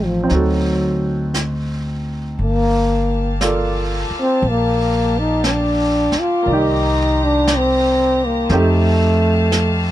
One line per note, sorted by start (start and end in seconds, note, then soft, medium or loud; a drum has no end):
0.00 0.26 A1 medium
0.00 0.22 C4 soft
0.00 0.26 D#4 soft
0.00 0.31 G4 soft
0.00 0.33 A4 soft
0.05 0.36 F3 medium
0.23 2.35 C4 soft
0.23 2.37 D#4 soft
0.29 2.35 D2 medium
0.29 2.39 F#4 soft
0.29 brush sweep soft
0.29 snare soft
0.34 1.37 F#3 medium
0.34 2.41 A4 soft
1.34 brush sweep soft
1.34 snare soft
1.34 hi-hat pedal soft
2.38 4.07 G1 medium
2.38 3.38 A#3 medium
2.38 9.91 G4 medium
2.38 6.42 F5 medium
2.38 6.42 A5 medium
2.38 brush sweep soft
3.41 6.41 A#3 soft
3.41 6.47 F4 soft
3.41 6.47 A4 soft
3.41 6.45 D5 soft
3.41 brush sweep soft
3.41 snare soft
3.41 hi-hat pedal soft
4.10 muted upright bass stroke soft
4.20 4.51 C4 medium
4.42 6.10 A#1 medium
4.42 brush sweep soft
4.50 5.20 A#3 medium
5.19 5.46 D#4 medium
5.44 5.54 C#4 medium
5.44 brush sweep soft
5.44 snare soft
5.44 hi-hat pedal soft
5.52 6.22 D4 medium
6.12 muted upright bass stroke soft
6.12 snare soft
6.20 6.55 F4 medium
6.42 8.46 C2 medium
6.42 8.48 A#3 soft
6.42 8.47 C5 medium
6.42 8.47 A#5 medium
6.42 brush sweep soft
6.47 8.52 D#3 soft
6.47 8.51 D5 soft
6.53 7.26 D#4 medium
6.53 8.51 G4 medium
7.24 7.58 D4 medium
7.47 brush sweep soft
7.47 snare soft
7.47 hi-hat pedal soft
7.57 8.27 C4 medium
8.26 8.61 A#3 medium
8.49 9.91 F2 medium
8.49 9.91 A3 medium
8.49 9.91 C4 soft
8.49 9.91 D#4 soft
8.49 9.91 G4 soft
8.49 9.91 F5 medium
8.49 9.91 A5 medium
8.49 brush sweep soft
8.49 snare soft
8.59 9.91 A3 medium
9.52 brush sweep soft
9.52 snare soft
9.52 hi-hat pedal soft